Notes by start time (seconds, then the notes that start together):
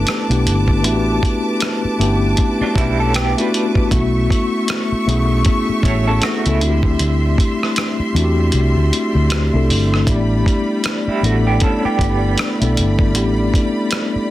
Already playing: A3 B3 C#4 D4 E4 A4 B4 A5 D6
0.07 cross-stick, closed hi-hat
0.29 B1 A3 B3 D4 E4 G4, closed hi-hat
0.45 G1, closed hi-hat
0.68 kick
0.83 A1 A3 B3 D4 E4 F#4, closed hi-hat
0.93 G4
1.23 kick, closed hi-hat
1.60 cross-stick, closed hi-hat
1.84 muted fingered electric bass stroke
1.99 G1 A3 B3 C#4 E4 G4, closed hi-hat
2.07 D4
2.37 kick, closed hi-hat
2.61 F#3 D4, muted fingered electric bass stroke
2.76 B1 G3 E4, kick, closed hi-hat
3.00 C#4 A4
3.14 B3 G4, cross-stick, closed hi-hat
3.37 A3 B3 D4 E4 F#4 B4, closed hi-hat
3.54 closed hi-hat
3.75 kick
3.90 B1 A3 B3 C#4 E4 E5 C#6, kick, closed hi-hat
3.95 F#4
4.30 kick, closed hi-hat
4.68 cross-stick, closed hi-hat
4.92 muted fingered electric bass stroke
5.06 B1 A3 B3 C#4 E4 G#4, closed hi-hat
5.45 kick, closed hi-hat
5.69 muted fingered electric bass stroke
5.83 A1 E4 C#5, kick, closed hi-hat
6.07 C#4 A4
6.22 A3 F#4, cross-stick, closed hi-hat
6.46 C#2 G#3 A3 B3 C#4 E4 A4, closed hi-hat
6.61 D2 G3 A3 C4 D4 E4 F#4 C6, closed hi-hat
6.70 G4
6.83 kick
6.99 D2, closed hi-hat
7.38 kick, closed hi-hat
7.63 cross-stick
7.76 cross-stick, closed hi-hat
7.99 muted fingered electric bass stroke
8.14 E2 A3 C4 D4 E4 F#4, closed hi-hat
8.24 G4
8.52 C2, closed hi-hat
8.76 D2
8.93 closed hi-hat
9.15 D2
9.30 cross-stick, closed hi-hat
9.53 C2 A3 C4 D4 E4 A4
9.69 G1, open hi-hat
9.94 cross-stick
10.07 A1 A3 B3 D4 E4 G4 D5 B5, kick, closed hi-hat
10.46 kick, closed hi-hat
10.84 cross-stick, closed hi-hat
11.07 G3 E4, muted fingered electric bass stroke
11.23 A1 A3 B3 D4 E4 F#4 A4, closed hi-hat
11.47 B3 G4
11.60 C#4 A4, kick, closed hi-hat
11.85 B3 G4, muted fingered electric bass stroke
11.99 G1, kick, closed hi-hat
12.38 cross-stick, closed hi-hat
12.60 B1 A3 B3 D4 E4 A4, closed hi-hat
12.77 G1, closed hi-hat
12.99 kick
13.14 A1 A3 B3 C#4 E4 G4, closed hi-hat
13.23 D4
13.54 kick, closed hi-hat
13.91 cross-stick, closed hi-hat
14.15 muted fingered electric bass stroke